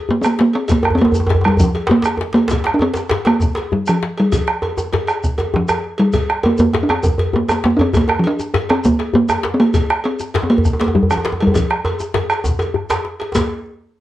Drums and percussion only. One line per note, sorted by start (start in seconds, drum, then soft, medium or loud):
0.09 djembe bass medium
0.23 bombo rim medium
0.23 cowbell medium
0.23 djembe tone medium
0.23 shekere medium
0.39 djembe slap medium
0.53 bombo rim soft
0.53 cowbell soft
0.68 bombo rim soft
0.68 bombo low loud
0.68 cowbell medium
0.68 djembe slap soft
0.68 djembe bass medium
0.68 shekere medium
0.83 bombo rim medium
0.83 djembe slap medium
0.83 djembe tone loud
0.91 djembe bass medium
0.98 cowbell medium
0.98 djembe tone medium
1.05 djembe tone loud
1.12 bombo rim soft
1.12 djembe tone medium
1.12 djembe bass medium
1.12 shekere soft
1.20 djembe tone medium
1.27 cowbell medium
1.27 djembe slap medium
1.27 djembe tone loud
1.27 djembe bass medium
1.35 djembe bass medium
1.41 bombo rim medium
1.41 cowbell medium
1.41 djembe tone medium
1.48 djembe tone loud
1.57 bombo rim soft
1.57 bombo low loud
1.57 djembe bass medium
1.57 shekere medium
1.64 djembe tone medium
1.75 cowbell medium
1.75 djembe slap medium
1.87 djembe slap loud
1.87 djembe bass medium
2.03 bombo rim medium
2.03 cowbell soft
2.03 djembe slap medium
2.03 djembe tone medium
2.03 shekere soft
2.18 djembe slap medium
2.18 djembe tone medium
2.33 bombo rim soft
2.33 cowbell medium
2.33 djembe slap medium
2.48 bombo rim soft
2.48 bombo low loud
2.48 cowbell medium
2.48 djembe slap loud
2.48 shekere medium
2.52 djembe slap soft
2.52 djembe bass medium
2.64 djembe slap medium
2.66 bombo rim medium
2.66 djembe slap medium
2.79 cowbell medium
2.79 djembe tone medium
2.94 bombo rim soft
2.94 djembe slap medium
2.94 djembe tone medium
2.94 shekere soft
3.09 cowbell medium
3.09 djembe slap loud
3.11 djembe slap medium
3.11 djembe bass medium
3.25 bombo rim medium
3.25 cowbell medium
3.25 djembe slap medium
3.40 bombo rim soft
3.40 bombo low loud
3.40 djembe tone medium
3.40 shekere medium
3.55 cowbell medium
3.55 djembe slap medium
3.57 djembe slap medium
3.72 djembe bass medium
3.86 bombo rim medium
3.86 cowbell medium
3.86 djembe tone medium
3.86 shekere soft
4.03 djembe slap medium
4.17 bombo rim soft
4.17 cowbell medium
4.32 bombo low medium
4.32 cowbell medium
4.32 djembe bass medium
4.32 shekere medium
4.47 bombo rim medium
4.47 djembe slap medium
4.62 bombo rim soft
4.62 cowbell medium
4.62 djembe slap soft
4.62 djembe tone medium
4.77 bombo rim soft
4.77 djembe slap soft
4.77 djembe tone medium
4.77 shekere medium
4.92 cowbell medium
4.92 djembe slap medium
4.92 djembe tone medium
4.92 djembe bass medium
5.07 bombo rim medium
5.07 cowbell medium
5.07 djembe slap soft
5.07 shekere soft
5.23 bombo rim soft
5.23 bombo low loud
5.23 djembe slap soft
5.23 shekere medium
5.38 cowbell medium
5.38 djembe slap medium
5.38 djembe tone medium
5.38 shekere soft
5.53 djembe tone medium
5.53 djembe bass medium
5.68 bombo rim medium
5.68 cowbell medium
5.68 djembe tone medium
5.68 shekere soft
5.98 bombo rim soft
5.98 cowbell medium
6.13 bombo rim soft
6.13 bombo low loud
6.13 cowbell medium
6.13 djembe slap soft
6.13 djembe bass medium
6.13 shekere medium
6.30 bombo rim medium
6.30 djembe slap medium
6.43 cowbell medium
6.43 djembe tone loud
6.58 bombo rim soft
6.58 djembe tone medium
6.58 djembe bass medium
6.58 shekere soft
6.73 cowbell medium
6.73 djembe slap medium
6.73 djembe tone medium
6.73 djembe bass medium
6.89 bombo rim medium
6.89 cowbell medium
6.89 djembe tone medium
7.03 bombo rim soft
7.03 bombo low loud
7.03 djembe tone loud
7.03 shekere medium
7.18 cowbell medium
7.18 djembe slap medium
7.18 djembe bass medium
7.33 djembe tone medium
7.33 djembe bass medium
7.49 bombo rim medium
7.49 cowbell medium
7.49 djembe tone medium
7.49 shekere soft
7.64 djembe slap medium
7.64 djembe tone loud
7.79 bombo rim soft
7.79 cowbell medium
7.79 djembe bass medium
7.94 bombo rim soft
7.94 bombo low loud
7.94 cowbell medium
7.94 djembe slap soft
7.94 djembe tone medium
7.94 djembe bass medium
7.94 shekere soft
8.08 bombo rim medium
8.08 djembe slap medium
8.08 djembe tone medium
8.24 cowbell medium
8.39 bombo rim soft
8.39 djembe tone medium
8.39 shekere soft
8.54 cowbell medium
8.54 djembe slap medium
8.54 djembe tone medium
8.54 djembe bass medium
8.69 bombo rim medium
8.69 cowbell medium
8.69 djembe slap medium
8.84 bombo rim soft
8.84 bombo low loud
8.84 shekere medium
8.99 cowbell medium
8.99 djembe slap medium
9.14 djembe bass medium
9.29 bombo rim medium
9.29 cowbell medium
9.29 djembe tone medium
9.29 shekere soft
9.44 djembe slap medium
9.60 bombo rim soft
9.60 cowbell medium
9.74 bombo rim soft
9.74 bombo low loud
9.74 cowbell medium
9.74 djembe slap soft
9.74 djembe bass medium
9.74 shekere medium
9.90 bombo rim medium
9.90 djembe slap medium
10.04 cowbell medium
10.19 bombo rim soft
10.19 djembe tone medium
10.19 shekere soft
10.34 cowbell medium
10.34 djembe slap medium
10.34 djembe slap loud
10.34 djembe bass medium
10.43 djembe tone medium
10.50 cowbell medium
10.58 djembe bass medium
10.65 bombo rim soft
10.65 bombo low loud
10.65 shekere medium
10.73 djembe tone medium
10.79 cowbell medium
10.79 djembe slap medium
10.79 djembe slap loud
10.88 djembe tone medium
10.95 djembe bass medium
11.02 djembe bass medium
11.10 bombo rim medium
11.10 cowbell medium
11.10 djembe tone medium
11.10 shekere soft
11.17 djembe tone medium
11.24 djembe slap loud
11.24 djembe slap medium
11.32 djembe tone medium
11.40 bombo rim soft
11.40 cowbell medium
11.46 djembe bass medium
11.54 bombo low loud
11.54 cowbell medium
11.54 djembe slap soft
11.54 djembe tone loud
11.54 djembe bass medium
11.54 shekere medium
11.70 bombo rim medium
11.70 djembe slap medium
11.84 bombo rim soft
11.84 cowbell medium
11.84 djembe tone loud
11.99 bombo rim soft
11.99 djembe tone medium
11.99 shekere soft
12.14 bombo rim soft
12.14 cowbell medium
12.14 djembe slap medium
12.14 djembe tone loud
12.14 djembe bass medium
12.30 bombo rim medium
12.30 cowbell medium
12.30 shekere soft
12.44 bombo low loud
12.44 djembe tone loud
12.44 shekere medium
12.59 cowbell medium
12.59 djembe slap medium
12.59 djembe tone loud
12.59 shekere soft
12.74 bombo rim soft
12.74 djembe bass medium
12.90 bombo rim medium
12.90 cowbell medium
12.90 djembe slap loud
12.90 djembe bass soft
12.90 shekere soft
13.05 djembe slap medium
13.20 bombo rim soft
13.20 cowbell medium
13.20 djembe slap medium
13.35 bombo low medium
13.35 cowbell medium
13.35 djembe slap loud
13.35 djembe bass medium
13.35 shekere medium